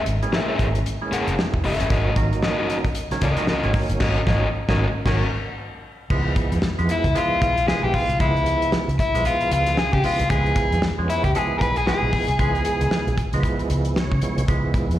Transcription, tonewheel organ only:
0.23 E3 G#3 A#3 C#4
1.01 E3 G#3 A#3 C#4
1.38 D#4 G#4
1.54 A#3 E4
1.80 G#3 C#4
1.90 D#3 F#3 A#3 C#4
2.17 D#3 F#3 A#3 D#4
3.12 D#3 F#3 A#3 C#4
3.38 D#3 F#3 A#3 D#4
3.64 D#3 F#3 A#3 C#4
4.01 D#3 F#3 A#3 C#4
4.27 D#3 F#3 A#3 C#4
4.69 D#3 F#3 A#3 C#4
5.05 D#3 F#3 A#3 C#4
6.10 F3 G#3 B3 E4
6.78 F3 G#3 B3 E4
7.15 F3 G#3 B3 E4
7.68 F3 G#3 B3 E4
8.20 F3 G#3 B3 E4
9.15 F3 G#3 B3 E4
10.04 F3 G#3 B3 E4
10.31 F3 G#3 B3 E4
10.98 F3 G#3 B3 C#4
11.35 F3 G#3 B3 E4
11.87 F3 G#3 B3 E4
12.40 F3 G#3 B3 E4
13.34 F3 G#3 B3 D#4
13.40 E4
13.97 C#5
14.22 F3 G#3 B3 E4
14.49 F3 G#3 B3 E4

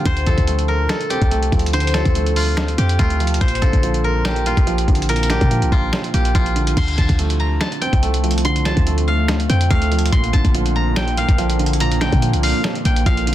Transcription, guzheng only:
Already playing: F4 G4 A#4
0.06 C5
0.27 A4
0.68 A#4
0.89 A4
1.10 G4
1.73 C5
1.94 A4
2.36 F4
2.78 G4
2.99 F4
3.41 C5
3.62 A4
4.04 A#4
4.25 G4
4.47 F4
5.09 A#4
5.30 G4
5.72 F4
6.14 G4
6.35 F4
6.78 C6
6.98 A5
7.40 A#5
7.61 A5
7.81 G5
8.45 C6
8.65 A5
9.08 F5
9.49 G5
9.70 F5
10.12 C6
10.33 A5
10.76 A#5
10.96 G5
11.18 F5
11.81 A#5
12.01 G5
12.43 F5
12.85 G5
13.06 F5

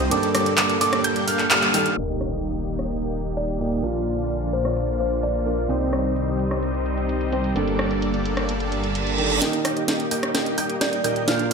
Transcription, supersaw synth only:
0.12 G3 A#3 D4 A4 D5
0.35 G3 A#3 D4 A4 D5
0.58 G3 A#3 D4 A4 D5
0.81 G3 A#3 D4 A4 D5
1.05 G3 A#3 D4 A4 G5
1.28 G3 A#3 D4 A4 F5
1.51 G3 A#3 D4 A4 F5
1.74 G3 A#3 D4 A4 F5
1.97 A#3 D#4 D#5
3.83 A#3 D4 F4 D5 F5
5.70 G3 C4 D#4 C5 D#5
7.56 G3 A#3 D4 A4 D5
9.42 A#3 D#4 G4 D#5 G5
9.65 A#3 D#4 G4 D#5 G5
9.88 A#3 D#4 G4 D#5 G5
10.11 A#3 D#4 G4 D#5 G5
10.35 A#3 D#4 G4 D#5 G5
10.58 A#3 D#4 G4 D#5 G5
10.81 A#3 D#4 G4 D#5 G5
11.04 A#3 D#4 G4 D#5 G5
11.28 A#3 D4 F4 D5 F5

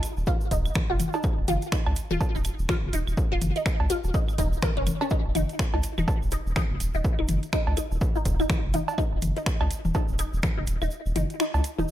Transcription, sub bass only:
0.17 D#1
0.51 D#1
0.90 F1
1.38 D#1
1.48 F#1
1.86 C#2
2.11 D#1
2.35 D#1
2.59 D#1
2.83 F#1
2.93 D#1
3.07 D#1
3.32 D#1
3.42 F#1
3.80 C#2
4.04 D#1
4.38 D#1
4.77 F1
5.25 D#1
5.35 F#1
5.74 C#2
5.98 D#1
6.22 D#1
6.46 D#1
6.70 F#1
6.80 D#1
6.95 D#1
7.19 D#1
7.29 F#1
7.67 C#2
7.91 D#1
8.25 D#1
8.64 F1
9.12 D#1
9.22 F#1
9.61 C#2
9.85 D#1
10.09 D#1
10.33 D#1
10.57 F#1
10.67 D#1
10.82 D#1
11.06 D#1
11.16 F#1
11.54 C#2
11.79 D#1

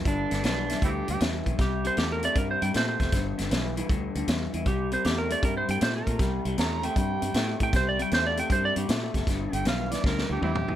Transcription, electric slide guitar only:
0.08 D4
0.46 D4
1.61 G4
1.87 C5
1.98 G4
2.12 A#4
2.25 D5
2.38 A#4
2.51 C5
2.62 G5
2.77 C5
2.89 C5
4.68 G4
4.94 C5
5.06 G4
5.18 A#4
5.32 D5
5.45 A#4
5.57 C5
5.71 G5
5.83 C5
5.96 A#4
7.63 G5
7.76 C5
7.89 D5
8.02 G5
8.14 C5
8.27 D5
8.40 G5
8.52 C5
8.65 D5
8.78 G4

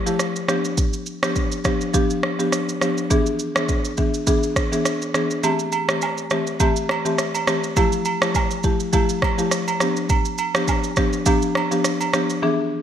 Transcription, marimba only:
0.06 F3 A3 E4 G4
0.48 F3 B3 D4 G4
1.22 F3 B3 D4 G4
1.65 F3 B3 D4 G4
1.94 F3 B3 D4 G4
2.39 F3 B3 D4 G4
2.81 F3 B3 D4 G4
3.10 E3 B3 D4 G#4
3.55 E3 B3 D4 G#4
3.98 E3 B3 D4 G#4
4.27 E3 B3 D4 G#4
4.72 E3 B3 D4 G#4
5.14 E3 B3 D4 G#4
5.43 E3 A3 C4 G4
5.88 E3 A3 C4 G4
6.31 E3 A3 C4 G4
6.60 E3 A3 C4 G4
7.05 E3 A3 C4 G4
7.47 E3 A3 C4 G4
7.76 F3 A3 E4 G4
8.22 F3 A3 E4 G4
8.64 F3 A3 E4 G4
8.93 F3 A3 E4 G4
9.38 F3 A3 E4 G4
9.80 F3 B3 D4 G4
10.55 F3 B3 D4 G4
10.97 F3 B3 D4 G4
11.26 F3 B3 D4 G4
11.71 F3 B3 D4 G4
12.13 F3 B3 D4 G4
12.42 E3 B3 D4 G#4

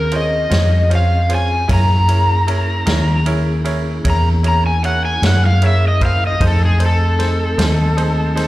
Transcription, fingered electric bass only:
Already playing: D#2
0.51 F2
1.69 F#2
2.87 D#2
4.04 E2
5.22 F#2
6.41 F2
7.58 D#2

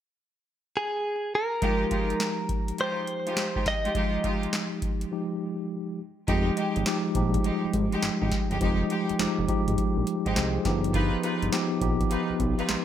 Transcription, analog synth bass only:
6.28 F1
6.76 G#1
7.15 A#1
7.64 G#1
7.74 G#1
8.03 G#1
8.22 G#1
8.51 G1
8.61 F1
9.10 F1
9.20 F1
9.39 F1
9.68 G#1
9.97 A#1
10.26 G#1
10.36 C2
10.65 G1
11.42 G1
11.82 A#1
12.30 B1
12.40 B1
12.69 A#1

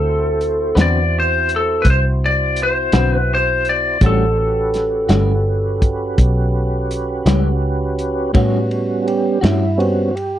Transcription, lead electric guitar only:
Already playing: A4
0.81 D5
1.20 C5
1.56 A4
1.82 B4
1.90 C5
2.26 D5
2.63 C5
3.13 B4
3.35 C5
3.69 D5
4.06 A4

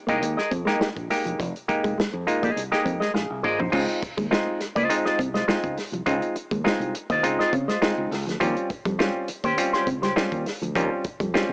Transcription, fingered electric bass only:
0.09 C2
0.22 D#2
0.52 F2
0.81 muted fingered electric bass stroke
0.97 A#1
1.26 E1
1.40 F1
1.84 F1
1.98 muted fingered electric bass stroke
2.14 F2
2.43 A#1
2.56 C2
2.86 F2
3.14 A#1
3.30 C2
3.59 A#1
3.73 C#2
4.18 D#2
4.61 muted fingered electric bass stroke
4.76 C#2
5.19 C2
5.48 muted fingered electric bass stroke
5.64 C#2
5.92 C2
6.07 C#2
6.52 D#2
6.80 C2
7.10 D#2
7.24 C#2
7.53 C#3
7.98 C#2
8.11 C#2
8.27 D2
8.41 D#2
8.86 F2
9.29 muted fingered electric bass stroke
9.44 D#2
9.87 C#2
10.17 muted fingered electric bass stroke
10.32 D#2
10.62 D2
10.76 D#2
11.20 F2
11.49 C#2

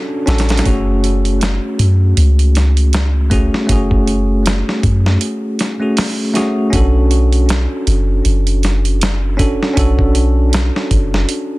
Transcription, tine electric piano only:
Already playing: C#4 D4 F#4 A4
0.26 C#4 D4 F#4 A4
0.63 A3 C#4 F#4
0.69 G#4
3.30 A3 C#4 F#4 G#4
3.67 A3 C#4 F#4
3.72 G#4
5.80 A3 C#4 F#4 G#4
6.34 A3 C#4 F#4 G#4
6.70 C#4 D4 F#4
6.76 A4
9.37 C#4 D4 F#4 A4
9.74 C#4 D4 F#4
9.79 A4

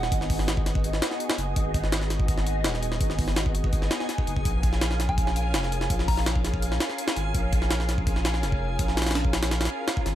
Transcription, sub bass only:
Already playing: D#1
0.12 G#1
1.38 F#1
1.56 G#1
2.65 D#1
3.01 G#1
4.27 F#1
4.45 A#1
5.54 F1
5.90 A#1
7.17 G#1
7.35 A#1
8.43 F1
8.79 A#1
10.06 G#1

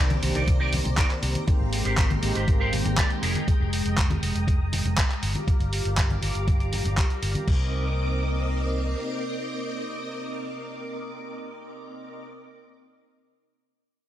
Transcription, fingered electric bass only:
Already playing: C2
0.23 C2
0.35 C2
0.85 C2
1.23 C2
1.48 muted fingered electric bass stroke
1.60 G#1
1.85 G#1
2.23 G#1
2.35 G#1
2.85 G#1
3.23 F1
3.48 muted fingered electric bass stroke
3.60 F1
3.85 F1
4.23 F1
4.35 F1
4.85 F1
5.23 G1
5.48 muted fingered electric bass stroke
5.60 G1
5.85 G1
6.23 G1
6.35 G1
6.85 G1
7.23 G1
7.48 C2

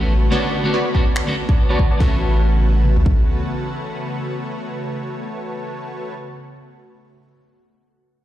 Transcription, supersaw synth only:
Already playing: A3 F#4 B4 C#5 A5
0.32 B3 F#4 C#5 D5 A5
0.74 B3 F#4 C#5 D5 B5
0.95 B3 F#4 C#5 D5 A5
1.49 B3 F#4 C#5 D5 A5
1.70 B3 F#4 C#5 D5 A5
1.91 B3 F#4 C#5 D5 A5
2.00 A3 F#4 B4 C#5 A5

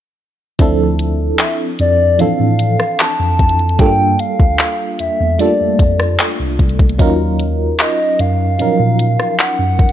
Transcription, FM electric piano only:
0.59 F3 C4 D4 E4 A4
2.19 E3 F3 C4 D4 A4
3.79 G3 A3 D4 F4 A4
3.86 A#3
5.39 G3 A3 D4 F4 A4
5.46 A#3
6.98 F#3 C#4 D#4 F4 A#4
8.59 F3 F#3 C#4 D#4 A#4

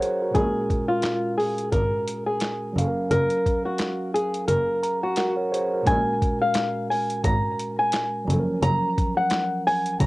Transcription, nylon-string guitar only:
0.35 G#4
0.88 F4
1.38 G#4
1.72 A#4
2.26 G#4
3.11 A#4
3.65 F#4
4.14 G#4
4.48 A#4
5.03 F#4
5.87 G#5
6.41 F5
6.90 G#5
7.24 A#5
7.79 G#5
8.63 A#5
9.17 F#5
9.67 G#5
10.01 A#5

